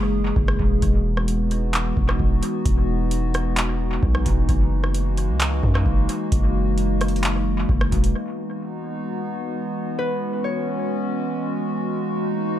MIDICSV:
0, 0, Header, 1, 5, 480
1, 0, Start_track
1, 0, Tempo, 458015
1, 863, Time_signature, 4, 2, 24, 8
1, 13197, End_track
2, 0, Start_track
2, 0, Title_t, "Harp"
2, 0, Program_c, 0, 46
2, 10466, Note_on_c, 0, 71, 97
2, 10943, Note_on_c, 0, 73, 79
2, 12613, Note_off_c, 0, 71, 0
2, 12947, Note_off_c, 0, 73, 0
2, 13197, End_track
3, 0, Start_track
3, 0, Title_t, "Ambient pad"
3, 0, Program_c, 1, 92
3, 0, Note_on_c, 1, 52, 81
3, 0, Note_on_c, 1, 56, 75
3, 0, Note_on_c, 1, 58, 77
3, 0, Note_on_c, 1, 63, 74
3, 0, Note_on_c, 1, 68, 92
3, 822, Note_off_c, 1, 52, 0
3, 822, Note_off_c, 1, 63, 0
3, 823, Note_off_c, 1, 58, 0
3, 843, Note_off_c, 1, 68, 0
3, 862, Note_on_c, 1, 59, 75
3, 862, Note_on_c, 1, 66, 88
3, 863, Note_on_c, 1, 52, 80
3, 863, Note_on_c, 1, 63, 75
3, 4662, Note_off_c, 1, 56, 0
3, 4664, Note_off_c, 1, 59, 0
3, 4664, Note_off_c, 1, 66, 0
3, 4702, Note_on_c, 1, 58, 74
3, 4703, Note_on_c, 1, 56, 79
3, 4703, Note_on_c, 1, 66, 87
3, 8500, Note_off_c, 1, 63, 0
3, 8501, Note_off_c, 1, 52, 0
3, 8504, Note_off_c, 1, 56, 0
3, 8504, Note_off_c, 1, 58, 0
3, 8504, Note_off_c, 1, 66, 0
3, 8542, Note_on_c, 1, 59, 77
3, 8542, Note_on_c, 1, 66, 94
3, 8543, Note_on_c, 1, 52, 85
3, 8543, Note_on_c, 1, 56, 75
3, 8543, Note_on_c, 1, 63, 76
3, 10444, Note_off_c, 1, 63, 0
3, 10463, Note_on_c, 1, 61, 77
3, 12344, Note_off_c, 1, 59, 0
3, 12363, Note_off_c, 1, 61, 0
3, 12382, Note_on_c, 1, 58, 74
3, 12382, Note_on_c, 1, 63, 79
3, 13197, Note_off_c, 1, 52, 0
3, 13197, Note_off_c, 1, 56, 0
3, 13197, Note_off_c, 1, 58, 0
3, 13197, Note_off_c, 1, 63, 0
3, 13197, Note_off_c, 1, 66, 0
3, 13197, End_track
4, 0, Start_track
4, 0, Title_t, "808-style bass"
4, 0, Program_c, 2, 38
4, 0, Note_on_c, 2, 30, 113
4, 341, Note_off_c, 2, 30, 0
4, 380, Note_on_c, 2, 30, 112
4, 612, Note_off_c, 2, 30, 0
4, 624, Note_on_c, 2, 28, 107
4, 853, Note_off_c, 2, 28, 0
4, 864, Note_on_c, 2, 28, 108
4, 2021, Note_off_c, 2, 28, 0
4, 2063, Note_on_c, 2, 28, 102
4, 2293, Note_off_c, 2, 28, 0
4, 2301, Note_on_c, 2, 28, 106
4, 2532, Note_off_c, 2, 28, 0
4, 2783, Note_on_c, 2, 28, 108
4, 4181, Note_off_c, 2, 28, 0
4, 4221, Note_on_c, 2, 35, 110
4, 4452, Note_off_c, 2, 35, 0
4, 4464, Note_on_c, 2, 28, 109
4, 4694, Note_off_c, 2, 28, 0
4, 4704, Note_on_c, 2, 30, 107
4, 5543, Note_on_c, 2, 37, 99
4, 5559, Note_off_c, 2, 30, 0
4, 5885, Note_off_c, 2, 37, 0
4, 5904, Note_on_c, 2, 42, 97
4, 6133, Note_off_c, 2, 42, 0
4, 6141, Note_on_c, 2, 30, 107
4, 6372, Note_off_c, 2, 30, 0
4, 6623, Note_on_c, 2, 30, 109
4, 8021, Note_off_c, 2, 30, 0
4, 8060, Note_on_c, 2, 30, 107
4, 8292, Note_off_c, 2, 30, 0
4, 8304, Note_on_c, 2, 28, 106
4, 8533, Note_off_c, 2, 28, 0
4, 13197, End_track
5, 0, Start_track
5, 0, Title_t, "Drums"
5, 380, Note_on_c, 9, 36, 103
5, 485, Note_off_c, 9, 36, 0
5, 506, Note_on_c, 9, 37, 98
5, 610, Note_off_c, 9, 37, 0
5, 624, Note_on_c, 9, 36, 99
5, 729, Note_off_c, 9, 36, 0
5, 863, Note_on_c, 9, 36, 115
5, 863, Note_on_c, 9, 42, 78
5, 967, Note_off_c, 9, 42, 0
5, 968, Note_off_c, 9, 36, 0
5, 1229, Note_on_c, 9, 37, 91
5, 1333, Note_off_c, 9, 37, 0
5, 1341, Note_on_c, 9, 42, 73
5, 1446, Note_off_c, 9, 42, 0
5, 1583, Note_on_c, 9, 42, 58
5, 1688, Note_off_c, 9, 42, 0
5, 1820, Note_on_c, 9, 42, 81
5, 1825, Note_on_c, 9, 39, 106
5, 1924, Note_off_c, 9, 42, 0
5, 1930, Note_off_c, 9, 39, 0
5, 2063, Note_on_c, 9, 36, 96
5, 2168, Note_off_c, 9, 36, 0
5, 2188, Note_on_c, 9, 37, 100
5, 2293, Note_off_c, 9, 37, 0
5, 2300, Note_on_c, 9, 36, 100
5, 2405, Note_off_c, 9, 36, 0
5, 2543, Note_on_c, 9, 42, 79
5, 2647, Note_off_c, 9, 42, 0
5, 2783, Note_on_c, 9, 36, 116
5, 2783, Note_on_c, 9, 42, 77
5, 2888, Note_off_c, 9, 36, 0
5, 2888, Note_off_c, 9, 42, 0
5, 3261, Note_on_c, 9, 42, 77
5, 3366, Note_off_c, 9, 42, 0
5, 3503, Note_on_c, 9, 42, 58
5, 3508, Note_on_c, 9, 37, 96
5, 3608, Note_off_c, 9, 42, 0
5, 3613, Note_off_c, 9, 37, 0
5, 3739, Note_on_c, 9, 42, 80
5, 3745, Note_on_c, 9, 39, 111
5, 3844, Note_off_c, 9, 42, 0
5, 3850, Note_off_c, 9, 39, 0
5, 4221, Note_on_c, 9, 36, 101
5, 4325, Note_off_c, 9, 36, 0
5, 4346, Note_on_c, 9, 37, 101
5, 4451, Note_off_c, 9, 37, 0
5, 4463, Note_on_c, 9, 42, 78
5, 4464, Note_on_c, 9, 36, 101
5, 4568, Note_off_c, 9, 42, 0
5, 4569, Note_off_c, 9, 36, 0
5, 4703, Note_on_c, 9, 36, 114
5, 4703, Note_on_c, 9, 42, 78
5, 4808, Note_off_c, 9, 36, 0
5, 4808, Note_off_c, 9, 42, 0
5, 5069, Note_on_c, 9, 37, 88
5, 5174, Note_off_c, 9, 37, 0
5, 5182, Note_on_c, 9, 42, 76
5, 5287, Note_off_c, 9, 42, 0
5, 5423, Note_on_c, 9, 42, 56
5, 5528, Note_off_c, 9, 42, 0
5, 5661, Note_on_c, 9, 42, 81
5, 5666, Note_on_c, 9, 39, 109
5, 5766, Note_off_c, 9, 42, 0
5, 5771, Note_off_c, 9, 39, 0
5, 5904, Note_on_c, 9, 36, 99
5, 6008, Note_off_c, 9, 36, 0
5, 6028, Note_on_c, 9, 37, 98
5, 6133, Note_off_c, 9, 37, 0
5, 6141, Note_on_c, 9, 36, 100
5, 6245, Note_off_c, 9, 36, 0
5, 6383, Note_on_c, 9, 42, 78
5, 6488, Note_off_c, 9, 42, 0
5, 6623, Note_on_c, 9, 42, 81
5, 6624, Note_on_c, 9, 36, 115
5, 6728, Note_off_c, 9, 36, 0
5, 6728, Note_off_c, 9, 42, 0
5, 7102, Note_on_c, 9, 42, 75
5, 7206, Note_off_c, 9, 42, 0
5, 7344, Note_on_c, 9, 42, 49
5, 7350, Note_on_c, 9, 37, 98
5, 7424, Note_off_c, 9, 42, 0
5, 7424, Note_on_c, 9, 42, 47
5, 7454, Note_off_c, 9, 37, 0
5, 7504, Note_off_c, 9, 42, 0
5, 7504, Note_on_c, 9, 42, 49
5, 7581, Note_off_c, 9, 42, 0
5, 7581, Note_on_c, 9, 42, 79
5, 7586, Note_on_c, 9, 39, 105
5, 7685, Note_off_c, 9, 42, 0
5, 7691, Note_off_c, 9, 39, 0
5, 8060, Note_on_c, 9, 36, 102
5, 8165, Note_off_c, 9, 36, 0
5, 8186, Note_on_c, 9, 37, 101
5, 8291, Note_off_c, 9, 37, 0
5, 8303, Note_on_c, 9, 42, 66
5, 8304, Note_on_c, 9, 36, 99
5, 8408, Note_off_c, 9, 42, 0
5, 8409, Note_off_c, 9, 36, 0
5, 8423, Note_on_c, 9, 42, 64
5, 8528, Note_off_c, 9, 42, 0
5, 13197, End_track
0, 0, End_of_file